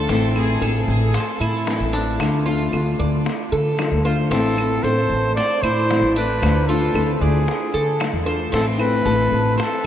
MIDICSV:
0, 0, Header, 1, 8, 480
1, 0, Start_track
1, 0, Key_signature, 0, "minor"
1, 0, Tempo, 526778
1, 88, Time_signature, 4, 2, 24, 8
1, 8988, End_track
2, 0, Start_track
2, 0, Title_t, "Cuban tres"
2, 0, Program_c, 0, 25
2, 83, Note_on_c, 0, 60, 78
2, 552, Note_off_c, 0, 60, 0
2, 563, Note_on_c, 0, 69, 75
2, 1033, Note_off_c, 0, 69, 0
2, 1044, Note_on_c, 0, 72, 74
2, 1277, Note_off_c, 0, 72, 0
2, 1281, Note_on_c, 0, 64, 72
2, 1752, Note_off_c, 0, 64, 0
2, 1759, Note_on_c, 0, 62, 81
2, 2231, Note_off_c, 0, 62, 0
2, 2239, Note_on_c, 0, 65, 76
2, 2712, Note_off_c, 0, 65, 0
2, 2728, Note_on_c, 0, 74, 80
2, 3196, Note_off_c, 0, 74, 0
2, 3210, Note_on_c, 0, 69, 76
2, 3678, Note_off_c, 0, 69, 0
2, 3689, Note_on_c, 0, 72, 75
2, 3924, Note_off_c, 0, 72, 0
2, 3927, Note_on_c, 0, 60, 81
2, 4397, Note_off_c, 0, 60, 0
2, 4412, Note_on_c, 0, 69, 68
2, 4879, Note_off_c, 0, 69, 0
2, 4894, Note_on_c, 0, 72, 78
2, 5127, Note_off_c, 0, 72, 0
2, 5133, Note_on_c, 0, 64, 80
2, 5600, Note_off_c, 0, 64, 0
2, 5614, Note_on_c, 0, 62, 80
2, 6080, Note_off_c, 0, 62, 0
2, 6095, Note_on_c, 0, 65, 81
2, 6560, Note_off_c, 0, 65, 0
2, 6573, Note_on_c, 0, 74, 74
2, 7039, Note_off_c, 0, 74, 0
2, 7052, Note_on_c, 0, 69, 76
2, 7518, Note_off_c, 0, 69, 0
2, 7528, Note_on_c, 0, 72, 77
2, 7763, Note_off_c, 0, 72, 0
2, 7764, Note_on_c, 0, 60, 75
2, 8234, Note_off_c, 0, 60, 0
2, 8249, Note_on_c, 0, 69, 66
2, 8716, Note_off_c, 0, 69, 0
2, 8725, Note_on_c, 0, 72, 76
2, 8961, Note_off_c, 0, 72, 0
2, 8988, End_track
3, 0, Start_track
3, 0, Title_t, "Trumpet"
3, 0, Program_c, 1, 56
3, 3693, Note_on_c, 1, 65, 82
3, 3801, Note_off_c, 1, 65, 0
3, 3929, Note_on_c, 1, 69, 98
3, 4403, Note_on_c, 1, 72, 107
3, 4416, Note_off_c, 1, 69, 0
3, 4874, Note_off_c, 1, 72, 0
3, 4880, Note_on_c, 1, 74, 115
3, 5120, Note_on_c, 1, 72, 107
3, 5134, Note_off_c, 1, 74, 0
3, 5601, Note_off_c, 1, 72, 0
3, 5606, Note_on_c, 1, 71, 96
3, 6083, Note_on_c, 1, 69, 91
3, 6096, Note_off_c, 1, 71, 0
3, 6505, Note_off_c, 1, 69, 0
3, 6513, Note_on_c, 1, 69, 61
3, 6567, Note_on_c, 1, 68, 93
3, 6581, Note_off_c, 1, 69, 0
3, 7290, Note_off_c, 1, 68, 0
3, 7780, Note_on_c, 1, 69, 95
3, 7886, Note_off_c, 1, 69, 0
3, 8016, Note_on_c, 1, 71, 104
3, 8697, Note_off_c, 1, 71, 0
3, 8749, Note_on_c, 1, 69, 97
3, 8988, Note_off_c, 1, 69, 0
3, 8988, End_track
4, 0, Start_track
4, 0, Title_t, "Violin section"
4, 0, Program_c, 2, 48
4, 0, Note_on_c, 2, 69, 113
4, 294, Note_off_c, 2, 69, 0
4, 326, Note_on_c, 2, 68, 113
4, 775, Note_off_c, 2, 68, 0
4, 813, Note_on_c, 2, 68, 95
4, 1035, Note_off_c, 2, 68, 0
4, 1045, Note_on_c, 2, 69, 93
4, 2009, Note_off_c, 2, 69, 0
4, 8988, End_track
5, 0, Start_track
5, 0, Title_t, "Nylon-string guitar"
5, 0, Program_c, 3, 24
5, 82, Note_on_c, 3, 52, 70
5, 89, Note_on_c, 3, 57, 89
5, 96, Note_on_c, 3, 60, 90
5, 98, Note_on_c, 3, 64, 81
5, 309, Note_off_c, 3, 64, 0
5, 316, Note_off_c, 3, 52, 0
5, 316, Note_off_c, 3, 60, 0
5, 319, Note_off_c, 3, 57, 0
5, 320, Note_on_c, 3, 64, 73
5, 327, Note_on_c, 3, 60, 67
5, 333, Note_on_c, 3, 57, 59
5, 553, Note_off_c, 3, 57, 0
5, 555, Note_off_c, 3, 64, 0
5, 555, Note_on_c, 3, 52, 47
5, 556, Note_off_c, 3, 60, 0
5, 564, Note_on_c, 3, 57, 49
5, 567, Note_on_c, 3, 60, 55
5, 574, Note_on_c, 3, 64, 55
5, 1030, Note_off_c, 3, 52, 0
5, 1034, Note_off_c, 3, 57, 0
5, 1036, Note_off_c, 3, 60, 0
5, 1038, Note_off_c, 3, 64, 0
5, 1523, Note_on_c, 3, 52, 53
5, 1527, Note_on_c, 3, 57, 47
5, 1533, Note_on_c, 3, 60, 51
5, 1538, Note_on_c, 3, 64, 46
5, 1749, Note_off_c, 3, 64, 0
5, 1756, Note_off_c, 3, 60, 0
5, 1758, Note_off_c, 3, 52, 0
5, 1760, Note_off_c, 3, 57, 0
5, 1760, Note_on_c, 3, 64, 69
5, 1767, Note_on_c, 3, 60, 58
5, 1772, Note_on_c, 3, 57, 50
5, 1994, Note_off_c, 3, 57, 0
5, 1997, Note_off_c, 3, 64, 0
5, 2000, Note_off_c, 3, 60, 0
5, 2000, Note_on_c, 3, 50, 84
5, 2005, Note_on_c, 3, 57, 77
5, 2013, Note_on_c, 3, 62, 80
5, 2015, Note_on_c, 3, 65, 84
5, 2235, Note_off_c, 3, 65, 0
5, 2237, Note_off_c, 3, 50, 0
5, 2239, Note_off_c, 3, 57, 0
5, 2243, Note_off_c, 3, 62, 0
5, 2246, Note_on_c, 3, 65, 72
5, 2253, Note_on_c, 3, 62, 65
5, 2257, Note_on_c, 3, 57, 52
5, 2475, Note_off_c, 3, 57, 0
5, 2480, Note_off_c, 3, 65, 0
5, 2481, Note_off_c, 3, 62, 0
5, 2484, Note_on_c, 3, 50, 47
5, 2486, Note_on_c, 3, 57, 55
5, 2492, Note_on_c, 3, 62, 55
5, 2499, Note_on_c, 3, 65, 52
5, 2959, Note_off_c, 3, 50, 0
5, 2960, Note_off_c, 3, 57, 0
5, 2963, Note_off_c, 3, 62, 0
5, 2967, Note_off_c, 3, 65, 0
5, 3456, Note_on_c, 3, 50, 49
5, 3459, Note_on_c, 3, 57, 48
5, 3464, Note_on_c, 3, 62, 47
5, 3468, Note_on_c, 3, 65, 50
5, 3679, Note_off_c, 3, 65, 0
5, 3685, Note_off_c, 3, 50, 0
5, 3685, Note_off_c, 3, 62, 0
5, 3687, Note_off_c, 3, 57, 0
5, 3690, Note_on_c, 3, 65, 72
5, 3696, Note_on_c, 3, 62, 60
5, 3704, Note_on_c, 3, 57, 55
5, 3923, Note_off_c, 3, 57, 0
5, 3923, Note_off_c, 3, 65, 0
5, 3926, Note_off_c, 3, 62, 0
5, 3929, Note_on_c, 3, 52, 77
5, 3934, Note_on_c, 3, 57, 77
5, 3938, Note_on_c, 3, 60, 82
5, 3946, Note_on_c, 3, 64, 76
5, 4162, Note_off_c, 3, 52, 0
5, 4162, Note_off_c, 3, 64, 0
5, 4165, Note_off_c, 3, 57, 0
5, 4166, Note_off_c, 3, 60, 0
5, 4173, Note_on_c, 3, 64, 70
5, 4180, Note_on_c, 3, 60, 65
5, 4186, Note_on_c, 3, 57, 52
5, 4404, Note_off_c, 3, 64, 0
5, 4408, Note_off_c, 3, 57, 0
5, 4408, Note_off_c, 3, 60, 0
5, 4414, Note_on_c, 3, 52, 51
5, 4419, Note_on_c, 3, 57, 52
5, 4425, Note_on_c, 3, 60, 55
5, 4429, Note_on_c, 3, 64, 51
5, 4885, Note_off_c, 3, 52, 0
5, 4887, Note_off_c, 3, 57, 0
5, 4888, Note_off_c, 3, 60, 0
5, 4893, Note_off_c, 3, 64, 0
5, 5379, Note_on_c, 3, 52, 49
5, 5382, Note_on_c, 3, 57, 46
5, 5389, Note_on_c, 3, 60, 52
5, 5392, Note_on_c, 3, 64, 48
5, 5603, Note_off_c, 3, 64, 0
5, 5607, Note_off_c, 3, 52, 0
5, 5609, Note_off_c, 3, 57, 0
5, 5612, Note_off_c, 3, 60, 0
5, 5614, Note_on_c, 3, 64, 65
5, 5623, Note_on_c, 3, 60, 51
5, 5629, Note_on_c, 3, 57, 60
5, 5844, Note_off_c, 3, 57, 0
5, 5845, Note_off_c, 3, 64, 0
5, 5845, Note_on_c, 3, 50, 75
5, 5849, Note_off_c, 3, 60, 0
5, 5855, Note_on_c, 3, 57, 82
5, 5857, Note_on_c, 3, 62, 75
5, 5862, Note_on_c, 3, 65, 87
5, 6079, Note_off_c, 3, 65, 0
5, 6080, Note_off_c, 3, 50, 0
5, 6085, Note_off_c, 3, 57, 0
5, 6086, Note_off_c, 3, 62, 0
5, 6090, Note_on_c, 3, 65, 68
5, 6097, Note_on_c, 3, 62, 67
5, 6104, Note_on_c, 3, 57, 61
5, 6322, Note_off_c, 3, 57, 0
5, 6323, Note_off_c, 3, 65, 0
5, 6326, Note_off_c, 3, 62, 0
5, 6326, Note_on_c, 3, 50, 47
5, 6333, Note_on_c, 3, 57, 55
5, 6339, Note_on_c, 3, 62, 56
5, 6342, Note_on_c, 3, 65, 60
5, 6800, Note_off_c, 3, 50, 0
5, 6802, Note_off_c, 3, 57, 0
5, 6803, Note_off_c, 3, 62, 0
5, 6805, Note_off_c, 3, 65, 0
5, 7287, Note_on_c, 3, 50, 52
5, 7291, Note_on_c, 3, 57, 53
5, 7297, Note_on_c, 3, 62, 52
5, 7302, Note_on_c, 3, 65, 55
5, 7516, Note_off_c, 3, 65, 0
5, 7520, Note_off_c, 3, 50, 0
5, 7522, Note_off_c, 3, 62, 0
5, 7523, Note_off_c, 3, 57, 0
5, 7527, Note_on_c, 3, 65, 68
5, 7533, Note_on_c, 3, 62, 60
5, 7543, Note_on_c, 3, 57, 55
5, 7761, Note_off_c, 3, 65, 0
5, 7763, Note_off_c, 3, 62, 0
5, 7769, Note_off_c, 3, 57, 0
5, 7771, Note_on_c, 3, 52, 80
5, 7779, Note_on_c, 3, 57, 80
5, 7781, Note_on_c, 3, 60, 80
5, 7784, Note_on_c, 3, 64, 91
5, 7993, Note_off_c, 3, 64, 0
5, 7999, Note_off_c, 3, 60, 0
5, 8003, Note_off_c, 3, 52, 0
5, 8004, Note_on_c, 3, 64, 72
5, 8005, Note_off_c, 3, 57, 0
5, 8010, Note_on_c, 3, 60, 72
5, 8015, Note_on_c, 3, 57, 64
5, 8239, Note_off_c, 3, 64, 0
5, 8242, Note_off_c, 3, 60, 0
5, 8244, Note_off_c, 3, 57, 0
5, 8250, Note_on_c, 3, 52, 48
5, 8257, Note_on_c, 3, 57, 57
5, 8259, Note_on_c, 3, 60, 52
5, 8263, Note_on_c, 3, 64, 58
5, 8721, Note_off_c, 3, 52, 0
5, 8725, Note_off_c, 3, 57, 0
5, 8726, Note_off_c, 3, 60, 0
5, 8728, Note_off_c, 3, 64, 0
5, 8988, End_track
6, 0, Start_track
6, 0, Title_t, "Upright bass"
6, 0, Program_c, 4, 32
6, 78, Note_on_c, 4, 33, 92
6, 540, Note_off_c, 4, 33, 0
6, 559, Note_on_c, 4, 33, 90
6, 792, Note_off_c, 4, 33, 0
6, 802, Note_on_c, 4, 33, 107
6, 1034, Note_off_c, 4, 33, 0
6, 1278, Note_on_c, 4, 45, 91
6, 1626, Note_off_c, 4, 45, 0
6, 1640, Note_on_c, 4, 33, 101
6, 1988, Note_off_c, 4, 33, 0
6, 2001, Note_on_c, 4, 38, 91
6, 2463, Note_off_c, 4, 38, 0
6, 2484, Note_on_c, 4, 38, 84
6, 2716, Note_off_c, 4, 38, 0
6, 2726, Note_on_c, 4, 38, 101
6, 2958, Note_off_c, 4, 38, 0
6, 3209, Note_on_c, 4, 50, 85
6, 3554, Note_off_c, 4, 50, 0
6, 3567, Note_on_c, 4, 38, 99
6, 3912, Note_off_c, 4, 38, 0
6, 3924, Note_on_c, 4, 33, 95
6, 4385, Note_off_c, 4, 33, 0
6, 4407, Note_on_c, 4, 33, 94
6, 4638, Note_off_c, 4, 33, 0
6, 4644, Note_on_c, 4, 33, 104
6, 4877, Note_off_c, 4, 33, 0
6, 5124, Note_on_c, 4, 45, 93
6, 5471, Note_off_c, 4, 45, 0
6, 5482, Note_on_c, 4, 33, 91
6, 5830, Note_off_c, 4, 33, 0
6, 5847, Note_on_c, 4, 38, 98
6, 6307, Note_off_c, 4, 38, 0
6, 6326, Note_on_c, 4, 38, 90
6, 6558, Note_off_c, 4, 38, 0
6, 6569, Note_on_c, 4, 38, 109
6, 6800, Note_off_c, 4, 38, 0
6, 7052, Note_on_c, 4, 50, 78
6, 7395, Note_off_c, 4, 50, 0
6, 7411, Note_on_c, 4, 40, 92
6, 7754, Note_off_c, 4, 40, 0
6, 7772, Note_on_c, 4, 33, 85
6, 8228, Note_off_c, 4, 33, 0
6, 8250, Note_on_c, 4, 33, 95
6, 8479, Note_off_c, 4, 33, 0
6, 8491, Note_on_c, 4, 33, 99
6, 8719, Note_off_c, 4, 33, 0
6, 8988, End_track
7, 0, Start_track
7, 0, Title_t, "Muted nylon-string guitar strokes"
7, 1041, Note_on_c, 9, 29, 69
7, 1132, Note_off_c, 9, 29, 0
7, 2970, Note_on_c, 9, 29, 69
7, 3061, Note_off_c, 9, 29, 0
7, 4898, Note_on_c, 9, 29, 68
7, 4989, Note_off_c, 9, 29, 0
7, 6812, Note_on_c, 9, 29, 67
7, 6903, Note_off_c, 9, 29, 0
7, 8731, Note_on_c, 9, 29, 74
7, 8822, Note_off_c, 9, 29, 0
7, 8988, End_track
8, 0, Start_track
8, 0, Title_t, "Drums"
8, 83, Note_on_c, 9, 60, 63
8, 174, Note_off_c, 9, 60, 0
8, 326, Note_on_c, 9, 60, 31
8, 327, Note_on_c, 9, 75, 70
8, 417, Note_off_c, 9, 60, 0
8, 418, Note_off_c, 9, 75, 0
8, 561, Note_on_c, 9, 60, 59
8, 652, Note_off_c, 9, 60, 0
8, 802, Note_on_c, 9, 60, 35
8, 894, Note_off_c, 9, 60, 0
8, 1041, Note_on_c, 9, 60, 69
8, 1132, Note_off_c, 9, 60, 0
8, 1290, Note_on_c, 9, 75, 71
8, 1381, Note_off_c, 9, 75, 0
8, 1525, Note_on_c, 9, 60, 71
8, 1525, Note_on_c, 9, 61, 88
8, 1616, Note_off_c, 9, 60, 0
8, 1616, Note_off_c, 9, 61, 0
8, 1765, Note_on_c, 9, 60, 37
8, 1856, Note_off_c, 9, 60, 0
8, 2005, Note_on_c, 9, 60, 67
8, 2012, Note_on_c, 9, 75, 65
8, 2096, Note_off_c, 9, 60, 0
8, 2103, Note_off_c, 9, 75, 0
8, 2252, Note_on_c, 9, 60, 36
8, 2344, Note_off_c, 9, 60, 0
8, 2489, Note_on_c, 9, 75, 63
8, 2494, Note_on_c, 9, 60, 52
8, 2580, Note_off_c, 9, 75, 0
8, 2585, Note_off_c, 9, 60, 0
8, 2973, Note_on_c, 9, 60, 65
8, 3064, Note_off_c, 9, 60, 0
8, 3215, Note_on_c, 9, 60, 38
8, 3307, Note_off_c, 9, 60, 0
8, 3452, Note_on_c, 9, 60, 67
8, 3452, Note_on_c, 9, 61, 92
8, 3454, Note_on_c, 9, 75, 62
8, 3543, Note_off_c, 9, 60, 0
8, 3543, Note_off_c, 9, 61, 0
8, 3545, Note_off_c, 9, 75, 0
8, 3696, Note_on_c, 9, 60, 37
8, 3787, Note_off_c, 9, 60, 0
8, 3932, Note_on_c, 9, 60, 67
8, 4023, Note_off_c, 9, 60, 0
8, 4170, Note_on_c, 9, 60, 37
8, 4175, Note_on_c, 9, 75, 72
8, 4261, Note_off_c, 9, 60, 0
8, 4267, Note_off_c, 9, 75, 0
8, 4414, Note_on_c, 9, 60, 56
8, 4505, Note_off_c, 9, 60, 0
8, 4657, Note_on_c, 9, 60, 34
8, 4748, Note_off_c, 9, 60, 0
8, 4896, Note_on_c, 9, 60, 61
8, 4987, Note_off_c, 9, 60, 0
8, 5135, Note_on_c, 9, 75, 68
8, 5227, Note_off_c, 9, 75, 0
8, 5382, Note_on_c, 9, 60, 69
8, 5382, Note_on_c, 9, 61, 89
8, 5473, Note_off_c, 9, 60, 0
8, 5473, Note_off_c, 9, 61, 0
8, 5619, Note_on_c, 9, 60, 38
8, 5710, Note_off_c, 9, 60, 0
8, 5856, Note_on_c, 9, 75, 68
8, 5860, Note_on_c, 9, 60, 71
8, 5947, Note_off_c, 9, 75, 0
8, 5951, Note_off_c, 9, 60, 0
8, 6095, Note_on_c, 9, 60, 35
8, 6186, Note_off_c, 9, 60, 0
8, 6335, Note_on_c, 9, 60, 55
8, 6337, Note_on_c, 9, 75, 69
8, 6426, Note_off_c, 9, 60, 0
8, 6428, Note_off_c, 9, 75, 0
8, 6817, Note_on_c, 9, 60, 68
8, 6908, Note_off_c, 9, 60, 0
8, 7057, Note_on_c, 9, 60, 37
8, 7148, Note_off_c, 9, 60, 0
8, 7292, Note_on_c, 9, 75, 65
8, 7298, Note_on_c, 9, 60, 79
8, 7298, Note_on_c, 9, 61, 80
8, 7383, Note_off_c, 9, 75, 0
8, 7389, Note_off_c, 9, 60, 0
8, 7389, Note_off_c, 9, 61, 0
8, 7542, Note_on_c, 9, 60, 42
8, 7633, Note_off_c, 9, 60, 0
8, 7780, Note_on_c, 9, 60, 68
8, 7871, Note_off_c, 9, 60, 0
8, 8014, Note_on_c, 9, 75, 65
8, 8024, Note_on_c, 9, 60, 38
8, 8105, Note_off_c, 9, 75, 0
8, 8115, Note_off_c, 9, 60, 0
8, 8260, Note_on_c, 9, 60, 56
8, 8351, Note_off_c, 9, 60, 0
8, 8503, Note_on_c, 9, 60, 35
8, 8595, Note_off_c, 9, 60, 0
8, 8746, Note_on_c, 9, 60, 69
8, 8837, Note_off_c, 9, 60, 0
8, 8988, End_track
0, 0, End_of_file